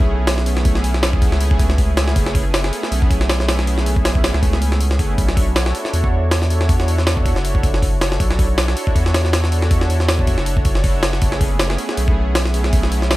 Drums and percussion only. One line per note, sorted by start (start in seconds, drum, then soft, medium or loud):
0.00 kick loud
0.27 snare loud
0.27 open hi-hat medium
0.38 snare soft
0.46 open hi-hat medium
0.57 snare soft
0.65 kick loud
0.65 open hi-hat medium
0.75 snare soft
0.84 open hi-hat medium
0.94 snare soft
1.03 snare loud
1.03 open hi-hat medium
1.13 kick loud
1.22 kick loud
1.22 open hi-hat medium
1.32 snare soft
1.41 open hi-hat medium
1.51 kick loud
1.59 kick loud
1.59 open hi-hat medium
1.70 snare soft
1.78 kick medium
1.78 open hi-hat medium
1.97 snare loud
1.97 open hi-hat medium
2.08 snare soft
2.16 kick loud
2.16 open hi-hat medium
2.26 snare medium
2.35 kick loud
2.35 open hi-hat medium
2.54 snare loud
2.54 open hi-hat medium
2.64 snare medium
2.73 open hi-hat medium
2.83 snare soft
2.92 open hi-hat medium
3.02 kick loud
3.11 kick loud
3.11 open hi-hat medium
3.21 snare medium
3.29 snare loud
3.29 open hi-hat medium
3.40 snare soft
3.49 snare loud
3.49 open hi-hat medium
3.59 snare soft
3.67 open hi-hat medium
3.78 snare soft
3.86 open hi-hat medium
3.96 kick medium
4.05 snare loud
4.05 open hi-hat medium
4.15 kick loud
4.24 snare loud
4.24 open hi-hat medium
4.34 snare soft
4.43 kick loud
4.43 open hi-hat medium
4.53 snare soft
4.62 open hi-hat medium
4.72 snare soft
4.81 open hi-hat medium
4.91 snare soft
4.99 kick medium
4.99 open hi-hat medium
5.18 kick loud
5.18 open hi-hat medium
5.29 snare medium
5.37 kick loud
5.37 open hi-hat medium
5.56 snare loud
5.56 open hi-hat medium
5.66 snare medium
5.75 open hi-hat medium
5.85 snare soft
5.94 open hi-hat medium
6.04 kick loud
6.31 snare loud
6.31 open hi-hat medium
6.42 snare soft
6.50 open hi-hat medium
6.61 snare soft
6.69 kick loud
6.69 open hi-hat medium
6.80 snare soft
6.88 open hi-hat medium
6.98 snare soft
7.07 snare loud
7.07 open hi-hat medium
7.17 kick medium
7.26 kick loud
7.26 open hi-hat medium
7.36 snare soft
7.45 open hi-hat medium
7.55 kick loud
7.63 kick loud
7.63 open hi-hat medium
7.74 snare soft
7.82 kick medium
7.82 open hi-hat medium
8.01 snare loud
8.01 open hi-hat medium
8.12 snare soft
8.20 kick loud
8.20 open hi-hat medium
8.31 snare medium
8.39 kick loud
8.39 open hi-hat medium
8.58 snare loud
8.58 open hi-hat medium
8.68 snare medium
8.77 open hi-hat medium
8.87 kick medium
8.96 kick medium
8.96 open hi-hat medium
9.06 snare soft
9.14 snare loud
9.14 open hi-hat medium
9.25 snare soft
9.33 snare loud
9.33 open hi-hat medium
9.44 snare soft
9.52 open hi-hat medium
9.62 snare soft
9.71 kick loud
9.71 open hi-hat medium
9.81 snare soft
9.90 open hi-hat medium
10.00 snare soft
10.08 snare loud
10.08 open hi-hat medium
10.19 kick loud
10.27 kick loud
10.27 open hi-hat medium
10.38 snare soft
10.46 open hi-hat medium
10.57 kick loud
10.65 kick loud
10.65 open hi-hat medium
10.75 snare soft
10.84 kick medium
10.84 open hi-hat medium
11.03 snare loud
11.03 open hi-hat medium
11.13 snare soft
11.22 kick loud
11.22 open hi-hat medium
11.32 snare soft
11.41 kick loud
11.41 open hi-hat medium
11.59 snare loud
11.59 open hi-hat medium
11.70 snare medium
11.78 open hi-hat medium
11.89 snare soft
11.97 open hi-hat medium
12.08 kick loud
12.35 snare loud
12.35 open hi-hat medium
12.45 snare soft
12.54 open hi-hat medium
12.64 snare soft
12.73 kick loud
12.73 open hi-hat medium
12.83 snare soft
12.92 open hi-hat medium
13.02 snare soft
13.11 snare loud
13.11 open hi-hat medium